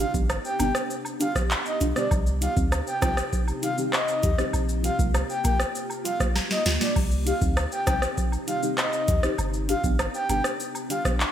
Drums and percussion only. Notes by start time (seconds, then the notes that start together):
0.14 kick, shaker
0.30 cross-stick, high woodblock, shaker
0.45 shaker
0.59 closed hi-hat, cabasa, high woodblock, shaker
0.75 cross-stick, shaker
0.90 shaker
1.05 high woodblock, shaker
1.20 closed hi-hat, cabasa, shaker
1.35 kick, cross-stick, shaker
1.51 clap, high woodblock, shaker
1.66 shaker
1.81 closed hi-hat, cabasa, shaker
1.96 cross-stick, shaker
2.11 kick, high woodblock, shaker
2.26 shaker
2.42 closed hi-hat, cabasa, shaker
2.57 kick, shaker
2.72 cross-stick, high woodblock, shaker
2.87 shaker
3.02 kick, cross-stick, closed hi-hat, cabasa, high woodblock, shaker
3.17 cross-stick, shaker
3.33 kick, shaker
3.48 high woodblock, shaker
3.63 closed hi-hat, cabasa, shaker
3.78 shaker
3.93 cross-stick, clap, high woodblock, shaker
4.08 shaker
4.23 kick, closed hi-hat, cabasa, shaker
4.38 cross-stick, shaker
4.53 high woodblock, shaker
4.69 shaker
4.84 closed hi-hat, cabasa, shaker
4.99 kick, shaker
5.14 cross-stick, high woodblock, shaker
5.30 shaker
5.44 kick, closed hi-hat, cabasa, high woodblock, shaker
5.60 cross-stick, shaker
5.75 shaker
5.90 high woodblock, shaker
6.05 closed hi-hat, cabasa, shaker
6.20 kick, cross-stick, shaker
6.35 snare, high woodblock, shaker
6.50 snare, shaker
6.65 snare, closed hi-hat, cabasa, shaker
6.81 snare, shaker
6.96 kick, crash, high woodblock
7.11 shaker
7.27 closed hi-hat, cabasa, shaker
7.42 kick, shaker
7.57 cross-stick, high woodblock, shaker
7.72 shaker
7.87 kick, cross-stick, closed hi-hat, cabasa, high woodblock, shaker
8.02 cross-stick, shaker
8.18 kick, shaker
8.32 high woodblock, shaker
8.48 closed hi-hat, cabasa, shaker
8.63 shaker
8.78 cross-stick, clap, high woodblock, shaker
8.93 shaker
9.08 kick, closed hi-hat, cabasa, shaker
9.23 cross-stick, shaker
9.38 high woodblock, shaker
9.54 shaker
9.69 closed hi-hat, cabasa, shaker
9.84 kick, shaker
9.99 cross-stick, high woodblock, shaker
10.14 shaker
10.29 closed hi-hat, cabasa, high woodblock, shaker
10.44 cross-stick, shaker
10.60 shaker
10.75 high woodblock, shaker
10.90 closed hi-hat, cabasa, shaker
11.05 kick, cross-stick, shaker
11.20 clap, high woodblock, shaker